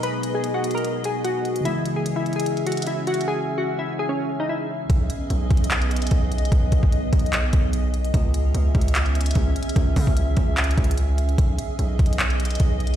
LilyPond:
<<
  \new Staff \with { instrumentName = "Ambient pad" } { \time 4/4 \key b \major \tempo 4 = 148 << { <b dis''>1 | <cis' e''>1~ | <cis' e''>1 | <b dis''>1~ |
<b dis''>1 | <cis' e''>1~ | <cis' e''>1 | <b dis''>1 | } \\ { gis'1~ | gis'1~ | gis'1 | gis'1~ |
gis'1~ | gis'1~ | gis'1~ | gis'1 | } >> }
  \new Staff \with { instrumentName = "Synth keys" } { \time 4/4 \key b \major b'8. gis'8 fis'8 ais'16 r8 gis'8 fis'4 | e'8. gis'8 e'8 gis'16 r8 fis'8 e'8 fis'8 | gis'8. fis'8 e'8 gis'16 cis'8. dis'16 e'8 r8 | r1 |
r1 | r1 | r1 | r1 | }
  \new Staff \with { instrumentName = "Tine electric piano" } { \clef bass \time 4/4 \key b \major <b, fis gis dis'>1 | <cis e gis e'>1~ | <cis e gis e'>1 | r1 |
r1 | r1 | r1 | r1 | }
  \new Staff \with { instrumentName = "808-style bass" } { \clef bass \time 4/4 \key b \major r1 | r1 | r1 | b,,8 r8 b,,8 b,,4. b,,4 |
b,,8 b,,16 b,,8. b,,4 b,,4. | cis,4 cis,8 cis,4. cis,8 r8 | cis,8 cis16 cis,8. cis,4 cis,4. | b,,8 r8 b,,8 b,,4. b,,4 | }
  \new DrumStaff \with { instrumentName = "Drums" } \drummode { \time 4/4 hh8 hh8 \tuplet 3/2 { hh16 r16 r16 hh16 hh16 hh16 } hh8 hh8 hh8 hh16 hh16 | hh8 hh8 \tuplet 3/2 { hh16 r16 r16 hh16 hh16 hh16 } hh16 hh16 hh32 hh32 hh32 hh32 \tuplet 3/2 { hh16 r16 r16 hh16 hh16 hh16 } | r4 r4 r4 r4 | <hh bd>8 hh8 \tuplet 3/2 { hh16 r16 r16 <hh bd>16 hh16 hh16 } <hc hh>16 hh16 hh32 hh32 hh32 hh32 \tuplet 3/2 { <hh bd>16 r16 r16 hh16 hh16 hh16 } |
<hh bd>8 <hh bd>16 bd16 \tuplet 3/2 { hh16 r16 r16 <hh bd>16 hh16 hh16 } <hc hh>8 <hh bd>8 hh8 hh16 hh16 | <hh bd>8 hh8 \tuplet 3/2 { hh16 r16 r16 <hh bd>16 hh16 hh16 } <hc hh>16 hh16 hh32 hh32 hh32 hh32 \tuplet 3/2 { <hh bd>16 r16 r16 hh16 hh16 hh16 } | <hh bd>8 <hho bd>16 bd16 hh8 <hh bd>8 \tuplet 3/2 { <hc hh>16 hh16 hh16 <hh bd>16 hh16 hh16 } hh8 hh16 hh16 | <hh bd>8 hh8 \tuplet 3/2 { hh16 r16 r16 <hh bd>16 hh16 hh16 } <hc hh>16 hh16 hh32 hh32 hh32 hh32 \tuplet 3/2 { <hh bd>16 r16 r16 hh16 hh16 r16 } | }
>>